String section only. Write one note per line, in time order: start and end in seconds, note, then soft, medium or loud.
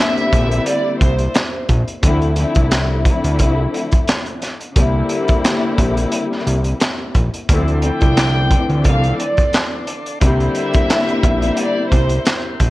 0.00 1.82 D3 loud
0.00 1.82 G3 loud
0.00 1.83 A#3 medium
0.00 1.83 C4 loud
0.00 1.83 E4 loud
2.02 2.34 D3 loud
2.02 2.35 F3 medium
2.02 2.35 A3 medium
2.02 2.36 C4 medium
2.02 2.36 E4 loud
2.35 3.00 D3 loud
2.35 3.00 F3 medium
2.35 3.00 A3 medium
2.35 3.01 C4 medium
2.35 3.01 E4 loud
3.06 4.32 D3 loud
3.06 4.33 F3 medium
3.06 4.33 A3 medium
3.06 4.34 C4 medium
3.06 4.34 E4 loud
4.74 7.27 D3 loud
4.74 7.28 G3 loud
4.74 7.28 A#3 loud
4.74 7.28 C4 loud
4.74 7.29 E4 loud
7.48 7.80 D3 loud
7.48 7.80 F3 medium
7.48 7.81 A3 medium
7.48 7.81 C4 medium
7.48 7.81 E4 loud
7.81 8.45 D3 loud
7.81 8.46 F3 medium
7.81 8.46 A3 medium
7.81 8.46 C4 medium
7.81 8.47 E4 loud
8.52 9.78 D3 loud
8.52 9.79 E3 loud
8.52 9.78 F3 medium
8.52 9.79 A3 medium
8.52 9.79 C4 medium
10.20 12.70 D3 loud
10.20 12.70 G3 loud
10.20 12.70 A#3 medium
10.20 12.70 C4 loud
10.20 12.70 E4 loud